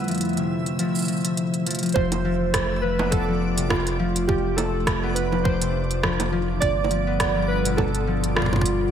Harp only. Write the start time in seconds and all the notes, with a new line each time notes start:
Already playing: B3
0.08 F3
0.37 C3
0.79 F3
1.08 F3
1.67 F3
1.83 F3
1.96 F3
2.25 F3
2.83 F3
2.99 B3
3.28 F3
3.57 C3
4.00 F3
4.29 F3
4.87 F3
5.03 B3
5.32 F3
5.62 C3
6.03 F3
6.32 F3
6.91 F3
7.07 B3
7.36 F3
7.66 B2
8.07 F3
8.36 F3